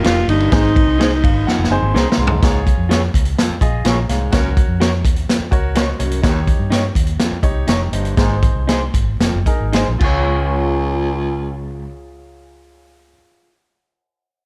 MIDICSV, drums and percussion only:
0, 0, Header, 1, 2, 480
1, 0, Start_track
1, 0, Key_signature, -5, "major"
1, 0, Tempo, 475813
1, 527, Time_signature, 4, 2, 24, 8
1, 6767, Tempo, 488599
1, 8207, Tempo, 519931
1, 9647, Tempo, 559180
1, 13696, End_track
2, 0, Start_track
2, 0, Title_t, "Drums"
2, 43, Note_on_c, 9, 51, 77
2, 58, Note_on_c, 9, 38, 114
2, 144, Note_off_c, 9, 51, 0
2, 158, Note_off_c, 9, 38, 0
2, 289, Note_on_c, 9, 51, 69
2, 390, Note_off_c, 9, 51, 0
2, 407, Note_on_c, 9, 51, 39
2, 508, Note_off_c, 9, 51, 0
2, 523, Note_on_c, 9, 51, 80
2, 526, Note_on_c, 9, 36, 121
2, 531, Note_on_c, 9, 38, 118
2, 624, Note_off_c, 9, 51, 0
2, 627, Note_off_c, 9, 36, 0
2, 632, Note_off_c, 9, 38, 0
2, 769, Note_on_c, 9, 36, 115
2, 771, Note_on_c, 9, 51, 64
2, 870, Note_off_c, 9, 36, 0
2, 872, Note_off_c, 9, 51, 0
2, 1014, Note_on_c, 9, 51, 73
2, 1018, Note_on_c, 9, 38, 127
2, 1115, Note_off_c, 9, 51, 0
2, 1119, Note_off_c, 9, 38, 0
2, 1248, Note_on_c, 9, 36, 88
2, 1254, Note_on_c, 9, 51, 75
2, 1349, Note_off_c, 9, 36, 0
2, 1355, Note_off_c, 9, 51, 0
2, 1496, Note_on_c, 9, 38, 71
2, 1597, Note_off_c, 9, 38, 0
2, 1655, Note_on_c, 9, 38, 62
2, 1756, Note_off_c, 9, 38, 0
2, 1976, Note_on_c, 9, 38, 85
2, 2077, Note_off_c, 9, 38, 0
2, 2137, Note_on_c, 9, 38, 111
2, 2238, Note_off_c, 9, 38, 0
2, 2293, Note_on_c, 9, 43, 113
2, 2394, Note_off_c, 9, 43, 0
2, 2447, Note_on_c, 9, 42, 94
2, 2448, Note_on_c, 9, 36, 120
2, 2455, Note_on_c, 9, 38, 107
2, 2548, Note_off_c, 9, 42, 0
2, 2549, Note_off_c, 9, 36, 0
2, 2556, Note_off_c, 9, 38, 0
2, 2690, Note_on_c, 9, 36, 100
2, 2695, Note_on_c, 9, 42, 74
2, 2791, Note_off_c, 9, 36, 0
2, 2796, Note_off_c, 9, 42, 0
2, 2935, Note_on_c, 9, 42, 82
2, 2938, Note_on_c, 9, 38, 117
2, 3036, Note_off_c, 9, 42, 0
2, 3039, Note_off_c, 9, 38, 0
2, 3169, Note_on_c, 9, 36, 92
2, 3177, Note_on_c, 9, 42, 95
2, 3270, Note_off_c, 9, 36, 0
2, 3278, Note_off_c, 9, 42, 0
2, 3279, Note_on_c, 9, 42, 49
2, 3380, Note_off_c, 9, 42, 0
2, 3415, Note_on_c, 9, 38, 127
2, 3418, Note_on_c, 9, 42, 104
2, 3516, Note_off_c, 9, 38, 0
2, 3518, Note_off_c, 9, 42, 0
2, 3643, Note_on_c, 9, 36, 83
2, 3647, Note_on_c, 9, 42, 74
2, 3744, Note_off_c, 9, 36, 0
2, 3748, Note_off_c, 9, 42, 0
2, 3881, Note_on_c, 9, 42, 88
2, 3895, Note_on_c, 9, 38, 115
2, 3981, Note_off_c, 9, 42, 0
2, 3996, Note_off_c, 9, 38, 0
2, 4128, Note_on_c, 9, 42, 78
2, 4137, Note_on_c, 9, 38, 37
2, 4229, Note_off_c, 9, 42, 0
2, 4238, Note_off_c, 9, 38, 0
2, 4361, Note_on_c, 9, 42, 96
2, 4366, Note_on_c, 9, 36, 113
2, 4368, Note_on_c, 9, 38, 112
2, 4462, Note_off_c, 9, 42, 0
2, 4467, Note_off_c, 9, 36, 0
2, 4469, Note_off_c, 9, 38, 0
2, 4609, Note_on_c, 9, 36, 101
2, 4610, Note_on_c, 9, 42, 73
2, 4710, Note_off_c, 9, 36, 0
2, 4711, Note_off_c, 9, 42, 0
2, 4855, Note_on_c, 9, 42, 84
2, 4858, Note_on_c, 9, 38, 120
2, 4956, Note_off_c, 9, 42, 0
2, 4959, Note_off_c, 9, 38, 0
2, 5091, Note_on_c, 9, 36, 94
2, 5095, Note_on_c, 9, 42, 87
2, 5191, Note_off_c, 9, 36, 0
2, 5196, Note_off_c, 9, 42, 0
2, 5207, Note_on_c, 9, 42, 46
2, 5308, Note_off_c, 9, 42, 0
2, 5341, Note_on_c, 9, 38, 125
2, 5344, Note_on_c, 9, 42, 105
2, 5442, Note_off_c, 9, 38, 0
2, 5444, Note_off_c, 9, 42, 0
2, 5567, Note_on_c, 9, 36, 81
2, 5572, Note_on_c, 9, 42, 61
2, 5668, Note_off_c, 9, 36, 0
2, 5673, Note_off_c, 9, 42, 0
2, 5804, Note_on_c, 9, 42, 93
2, 5818, Note_on_c, 9, 38, 110
2, 5904, Note_off_c, 9, 42, 0
2, 5919, Note_off_c, 9, 38, 0
2, 6048, Note_on_c, 9, 42, 77
2, 6149, Note_off_c, 9, 42, 0
2, 6167, Note_on_c, 9, 42, 53
2, 6268, Note_off_c, 9, 42, 0
2, 6290, Note_on_c, 9, 36, 114
2, 6293, Note_on_c, 9, 42, 87
2, 6301, Note_on_c, 9, 38, 109
2, 6391, Note_off_c, 9, 36, 0
2, 6394, Note_off_c, 9, 42, 0
2, 6402, Note_off_c, 9, 38, 0
2, 6532, Note_on_c, 9, 36, 97
2, 6532, Note_on_c, 9, 42, 72
2, 6632, Note_off_c, 9, 36, 0
2, 6633, Note_off_c, 9, 42, 0
2, 6776, Note_on_c, 9, 42, 84
2, 6779, Note_on_c, 9, 38, 117
2, 6874, Note_off_c, 9, 42, 0
2, 6877, Note_off_c, 9, 38, 0
2, 7008, Note_on_c, 9, 36, 88
2, 7014, Note_on_c, 9, 42, 96
2, 7106, Note_off_c, 9, 36, 0
2, 7112, Note_off_c, 9, 42, 0
2, 7118, Note_on_c, 9, 42, 48
2, 7216, Note_off_c, 9, 42, 0
2, 7246, Note_on_c, 9, 38, 123
2, 7249, Note_on_c, 9, 42, 93
2, 7345, Note_off_c, 9, 38, 0
2, 7347, Note_off_c, 9, 42, 0
2, 7476, Note_on_c, 9, 36, 83
2, 7477, Note_on_c, 9, 42, 61
2, 7575, Note_off_c, 9, 36, 0
2, 7575, Note_off_c, 9, 42, 0
2, 7716, Note_on_c, 9, 42, 90
2, 7730, Note_on_c, 9, 38, 115
2, 7815, Note_off_c, 9, 42, 0
2, 7829, Note_off_c, 9, 38, 0
2, 7965, Note_on_c, 9, 42, 72
2, 8063, Note_off_c, 9, 42, 0
2, 8084, Note_on_c, 9, 42, 49
2, 8182, Note_off_c, 9, 42, 0
2, 8205, Note_on_c, 9, 42, 84
2, 8207, Note_on_c, 9, 36, 113
2, 8213, Note_on_c, 9, 38, 115
2, 8298, Note_off_c, 9, 42, 0
2, 8299, Note_off_c, 9, 36, 0
2, 8305, Note_off_c, 9, 38, 0
2, 8438, Note_on_c, 9, 42, 73
2, 8440, Note_on_c, 9, 36, 105
2, 8531, Note_off_c, 9, 42, 0
2, 8533, Note_off_c, 9, 36, 0
2, 8679, Note_on_c, 9, 42, 83
2, 8682, Note_on_c, 9, 38, 111
2, 8771, Note_off_c, 9, 42, 0
2, 8775, Note_off_c, 9, 38, 0
2, 8914, Note_on_c, 9, 36, 88
2, 8917, Note_on_c, 9, 42, 88
2, 9006, Note_off_c, 9, 36, 0
2, 9009, Note_off_c, 9, 42, 0
2, 9159, Note_on_c, 9, 38, 116
2, 9162, Note_on_c, 9, 42, 90
2, 9252, Note_off_c, 9, 38, 0
2, 9254, Note_off_c, 9, 42, 0
2, 9396, Note_on_c, 9, 36, 81
2, 9397, Note_on_c, 9, 42, 64
2, 9488, Note_off_c, 9, 36, 0
2, 9490, Note_off_c, 9, 42, 0
2, 9644, Note_on_c, 9, 42, 84
2, 9657, Note_on_c, 9, 38, 114
2, 9730, Note_off_c, 9, 42, 0
2, 9742, Note_off_c, 9, 38, 0
2, 9882, Note_on_c, 9, 36, 106
2, 9883, Note_on_c, 9, 49, 87
2, 9968, Note_off_c, 9, 36, 0
2, 9969, Note_off_c, 9, 49, 0
2, 13696, End_track
0, 0, End_of_file